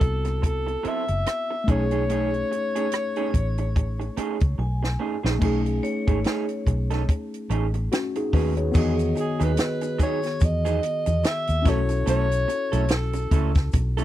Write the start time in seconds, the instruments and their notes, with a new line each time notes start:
Already playing: tine electric piano B3 C4 E4 F#4, alto saxophone A4
0.01 fingered electric bass C2, muted clean electric guitar stroke, kick, closed hi-hat
0.25 muted clean electric guitar stroke, cross-stick, closed hi-hat
0.42 alto saxophone A4, muted clean electric guitar stroke, kick, closed hi-hat
0.67 muted clean electric guitar stroke, closed hi-hat
0.83 clean electric guitar F#3 C4 E4 A4, muted fingered electric bass stroke, closed hi-hat
0.88 alto saxophone E5
1.08 fingered electric bass F#1, muted clean electric guitar stroke, closed hi-hat
1.26 muted clean electric guitar stroke, cross-stick, closed hi-hat
1.50 muted clean electric guitar stroke
1.64 tine electric piano A3 C#4, clean electric guitar A3, kick
1.68 fingered electric bass B1, clean electric guitar C#4 D#4 G#4, tine electric piano D#4 G#4, alto saxophone C#5, closed hi-hat
1.91 clean electric guitar A3 C#4 D#4 G#4, closed hi-hat
2.09 clean electric guitar A3 C#4 D#4 G#4, closed hi-hat
2.34 muted clean electric guitar stroke, closed hi-hat
2.51 muted clean electric guitar stroke, closed hi-hat
2.75 clean electric guitar A3 C#4 D#4 G#4, closed hi-hat
2.92 muted clean electric guitar stroke, cross-stick, closed hi-hat
3.16 clean electric guitar A3 C#4 D#4 G#4, closed hi-hat
3.34 fingered electric bass A1, muted clean electric guitar stroke, kick, closed hi-hat
3.58 muted clean electric guitar stroke, closed hi-hat
3.76 muted clean electric guitar stroke, kick, closed hi-hat
4.00 muted clean electric guitar stroke, closed hi-hat
4.17 clean electric guitar A3 C#4 D#4 G#4, muted fingered electric bass stroke, closed hi-hat
4.40 fingered electric bass C#2, muted clean electric guitar stroke, kick, closed hi-hat
4.58 fingered electric bass B1, vibraphone G#5, muted clean electric guitar stroke
4.83 muted clean electric guitar stroke, snare
4.99 clean electric guitar A3 C#4 D#4 G#4
5.23 fingered electric bass A#1, clean electric guitar A3 C#4 D#4 G#4, snare
5.39 fingered electric bass B1, tine electric piano A3 C#4, clean electric guitar A3 C#4 D#4 G#4, kick, crash
5.43 tine electric piano D#4 G#4
5.66 muted clean electric guitar stroke, closed hi-hat
5.83 vibraphone C#5, muted clean electric guitar stroke, closed hi-hat
6.07 fingered electric bass G#1, clean electric guitar A3 C#4 D#4 G#4, kick, closed hi-hat
6.24 clean electric guitar A3 C#4 D#4 G#4, snare, closed hi-hat
6.49 closed hi-hat
6.67 fingered electric bass B1, muted clean electric guitar stroke, kick, closed hi-hat
6.90 clean electric guitar A3 C#4 D#4 A4, snare, closed hi-hat
7.08 muted clean electric guitar stroke, kick, closed hi-hat
7.34 closed hi-hat
7.50 fingered electric bass A1, clean electric guitar A3 C#4 D#4 G#4, closed hi-hat
7.74 muted clean electric guitar stroke, closed hi-hat
7.92 tine electric piano C#4 F#4, muted clean electric guitar stroke, snare, closed hi-hat
8.15 tine electric piano D#4 G#4, muted clean electric guitar stroke, closed hi-hat
8.33 fingered electric bass D#2, clean electric guitar A3 C#4 D#4 G#4, tine electric piano F#4 B4, kick, open hi-hat
8.57 tine electric piano G#4 C#5, muted clean electric guitar stroke, closed hi-hat
8.72 fingered electric bass E2, tine electric piano D#3 B3, clean electric guitar F#3 B3, vibraphone D#5, kick, crash, shaker
8.76 clean electric guitar D#4 G#4, tine electric piano F#4 G#4
8.99 closed hi-hat, shaker
9.16 muted clean electric guitar stroke, closed hi-hat, shaker
9.20 alto saxophone G#4
9.40 fingered electric bass D#2, clean electric guitar F#3 B3 D#4 G#4, alto saxophone B4, closed hi-hat, shaker
9.57 muted clean electric guitar stroke, snare, closed hi-hat, shaker
9.81 muted clean electric guitar stroke, closed hi-hat, shaker
9.98 clean electric guitar F#3 B3 D#4 G#4, kick, closed hi-hat, shaker
10.03 alto saxophone C#5
10.23 muted clean electric guitar stroke, snare, closed hi-hat, shaker
10.40 fingered electric bass E2, muted clean electric guitar stroke, kick, closed hi-hat, shaker
10.45 alto saxophone D#5
10.65 clean electric guitar F#3 B3 D#4 G#4, closed hi-hat, shaker
10.83 muted clean electric guitar stroke, closed hi-hat
11.06 fingered electric bass E2, muted clean electric guitar stroke, closed hi-hat, shaker
11.24 alto saxophone E5, muted clean electric guitar stroke, snare, closed hi-hat, shaker
11.47 fingered electric bass D#2, closed hi-hat, shaker
11.62 fingered electric bass B1, clean electric guitar A3 C#4, tine electric piano C#4 E4, kick, closed hi-hat, shaker
11.67 clean electric guitar E4 A4, tine electric piano F#4 A4, alto saxophone C#5, snare
11.89 muted clean electric guitar stroke, closed hi-hat, shaker
12.06 fingered electric bass B1, clean electric guitar A3 C#4 E4 A4, alto saxophone C#5, closed hi-hat, shaker
12.31 closed hi-hat, shaker
12.48 muted clean electric guitar stroke, closed hi-hat, shaker
12.72 fingered electric bass B1, clean electric guitar A3 C#4 E4 A4, closed hi-hat, shaker
12.88 alto saxophone A4, muted clean electric guitar stroke, snare, closed hi-hat, shaker
13.13 muted clean electric guitar stroke, closed hi-hat, shaker
13.31 fingered electric bass C#2, clean electric guitar A3 C#4 E4 A4, kick, closed hi-hat, shaker
13.55 muted clean electric guitar stroke, kick, snare, closed hi-hat, shaker
13.73 fingered electric bass B1, muted clean electric guitar stroke, kick, closed hi-hat, shaker
13.97 clean electric guitar A3 C#4 E4 A4, closed hi-hat, shaker